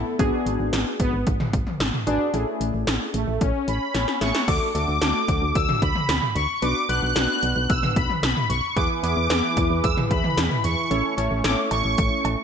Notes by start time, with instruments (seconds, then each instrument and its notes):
Already playing: synth keys A3 B3 E4 A4
0.19 fm bass G#1, synth keys B3 D4 F#4 G#4, kick, closed hi-hat
0.46 fm bass G#1, closed hi-hat
0.59 fm bass G#1
0.73 fm bass G#1, snare, closed hi-hat
1.00 fm bass G#1, analog polysynth B3, kick, closed hi-hat
1.13 fm bass G#1
1.27 fm bass G#1, kick, closed hi-hat
1.40 mid tom
1.53 fm bass G#1, kick, closed hi-hat
1.67 mid tom
1.80 fm bass G#1, snare, closed hi-hat
1.94 mid tom
2.07 fm bass G#1, synth keys B3 D4 F#4 G#4, analog polysynth D4, closed hi-hat
2.34 fm bass A1, synth keys A3 C#4 E4 G#4, closed hi-hat
2.60 fm bass A1, closed hi-hat
2.74 fm bass A1
2.87 fm bass A1, snare, closed hi-hat
3.14 fm bass A1, analog polysynth A3, closed hi-hat
3.28 fm bass A1
3.41 fm bass A1, analog polysynth C#4, kick, closed hi-hat
3.68 fm bass A1, analog polysynth B5, closed hi-hat
3.94 fm bass A1, analog polysynth C#4, snare, closed hi-hat
4.08 snare
4.21 fm bass A1, synth keys A3 C#4 E4 G#4, analog polysynth C#6, snare, closed hi-hat
4.35 snare
4.48 fm bass D2, synth keys A3 D4 F#4 A4, analog polysynth D6, kick, closed hi-hat, crash
4.75 fm bass D2, synth keys A3 D4 F#4 A4, analog polysynth D6, closed hi-hat
4.88 fm bass D2
5.01 fm bass D2, synth keys A3 D4 F#4 A4, snare, closed hi-hat
5.28 fm bass D2, kick, closed hi-hat
5.42 fm bass D2
5.55 fm bass D2, analog polysynth E6, kick, closed hi-hat
5.69 mid tom
5.82 fm bass D2, analog polysynth B5, kick, closed hi-hat
5.95 mid tom
6.09 fm bass D2, snare, closed hi-hat
6.22 mid tom
6.35 fm bass D2, analog polysynth C#6, closed hi-hat
6.62 fm bass B1, synth keys B3 D4 F#4 B4, analog polysynth D6, closed hi-hat
6.89 fm bass B1, synth keys B3 D4 F#4 B4, analog polysynth F#6, closed hi-hat
7.03 fm bass B1
7.16 fm bass B1, synth keys B3 D4 F#4 B4, snare, closed hi-hat
7.43 fm bass B1, closed hi-hat
7.56 fm bass B1
7.69 fm bass B1, analog polysynth E6, kick, closed hi-hat
7.83 mid tom
7.96 fm bass B1, analog polysynth B5, kick, closed hi-hat
8.10 mid tom
8.23 fm bass B1, analog polysynth B5, snare, closed hi-hat
8.37 mid tom
8.49 fm bass B1, analog polysynth C#6, closed hi-hat
8.76 fm bass E2, analog synth pad E3 E4 G#4 B4, synth keys B3 E4 G#4 B4, analog polysynth D6, kick, closed hi-hat
9.03 fm bass E2, synth keys B3 E4 G#4 B4, analog polysynth D6, closed hi-hat
9.17 fm bass E2
9.30 fm bass E2, synth keys B3 E4 G#4 B4, snare, closed hi-hat
9.57 fm bass E2, kick, closed hi-hat
9.70 fm bass E2
9.83 fm bass E2, analog polysynth E6, kick, closed hi-hat
9.97 mid tom
10.10 fm bass E2, analog polysynth B5, kick, closed hi-hat
10.24 mid tom
10.37 fm bass E2, snare, closed hi-hat
10.51 mid tom
10.64 fm bass E2, analog polysynth C#6, closed hi-hat
10.91 fm bass A1, analog synth pad A3 C#4, synth keys C#4 E4 A4 C#5, closed hi-hat
11.18 fm bass A1, synth keys C#4 E4 A4 C#5, closed hi-hat
11.31 fm bass A1
11.44 fm bass A1, synth keys C#4 E4 A4 C#5, analog polysynth D6, snare, closed hi-hat
11.71 fm bass A1, analog polysynth C#6, closed hi-hat, cowbell
11.85 fm bass A1
11.98 fm bass A1, kick, closed hi-hat
12.25 fm bass A1, closed hi-hat, cowbell